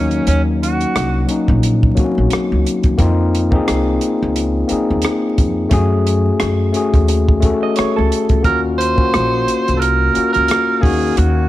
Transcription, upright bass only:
0.00 0.21 D#2 medium
0.27 0.83 D#2 medium
0.96 1.24 C2 medium
1.49 1.89 A#1 medium
1.98 muted upright bass stroke soft
2.18 2.29 A#1 medium
2.32 muted upright bass stroke soft
2.52 2.63 C#2 medium
2.85 2.97 D#2 medium
3.00 3.56 F2 loud
3.69 3.96 C2 medium
4.22 4.62 C#2 medium
4.71 muted upright bass stroke soft
4.90 5.02 D#2 medium
5.40 5.67 F2 medium
5.72 6.28 F#2 loud
6.42 6.70 F#2 medium
6.95 7.51 D#2 medium
7.79 muted upright bass stroke soft
7.98 8.09 C#2 medium
8.31 8.45 C#2 medium
8.45 9.02 D#2 medium
9.15 9.42 A#1 medium
9.68 10.08 C2 medium
10.17 muted upright bass stroke soft
10.36 10.47 C#2 medium
10.84 11.12 D#2 medium
11.18 11.49 D#2 loud

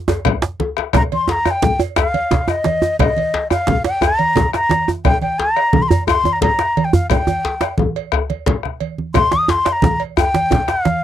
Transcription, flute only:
0.96 1.02 A#5 loud
1.14 1.32 C6 medium
1.31 1.47 A#5 loud
1.47 1.81 G5 medium
1.47 1.52 A#5 medium
1.97 2.51 F5 medium
2.49 2.99 D#5 medium
3.00 3.48 D#5 medium
3.51 3.83 F5 medium
3.86 4.05 G5 medium
4.03 4.54 A#5 medium
4.55 4.90 A#5 loud
5.06 5.21 G5 loud
5.22 5.40 G5 medium
5.39 5.84 A#5 loud
5.82 5.90 C6 medium
5.89 6.07 A#5 medium
6.07 6.34 C6 loud
6.33 6.42 A#5 medium
6.42 6.86 A#5 medium
6.85 6.95 G5 medium
6.94 7.10 F5 medium
7.11 7.75 G5 medium
9.15 9.34 C6 loud
9.32 9.52 D#6 medium
9.51 9.68 C6 loud
9.68 9.74 C6 medium
9.73 10.02 A#5 loud
10.18 10.72 G5 loud
10.70 11.04 F5 medium

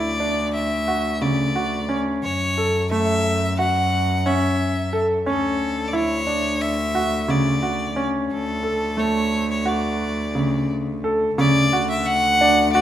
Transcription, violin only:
0.00 0.51 D5 medium
0.54 1.23 E5 medium
1.22 1.98 D5 medium
2.23 2.87 C#5 loud
2.92 3.55 E5 loud
3.60 4.28 F#5 medium
4.27 5.02 E5 medium
5.30 5.89 A4 medium
5.88 5.97 D5 medium
5.95 6.63 C#5 medium
6.62 7.32 E5 medium
7.30 8.05 D5 medium
8.32 9.01 A4 medium
8.99 9.50 C#5 medium
9.51 9.70 C#5 medium
9.68 10.70 D5 medium
11.39 11.87 D5 loud
11.90 12.07 E5 medium
12.06 12.73 F#5 loud
12.73 12.81 D5 medium

